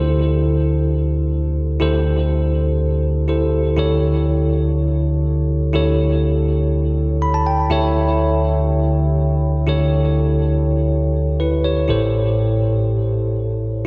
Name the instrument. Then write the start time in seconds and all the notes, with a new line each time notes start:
tine electric piano
Already playing: D2 D3 E4 G4 A4 C5
1.80 D2 D3 E4 G4 A4 C5
3.28 E4 G4 A4 C5
3.77 D2 D3 E4 G4 A4 C#5
5.73 D2 D3 E4 G4 A4 C#5
7.22 B5
7.34 A5
7.47 G5
7.70 D2 D3 E4 G4 A4 C#5 E5
9.67 D2 D3 E4 G4 A4 C#5
11.40 E4 B4
11.65 G4 C#5
11.88 A1 A2 E4 G4 A4 C5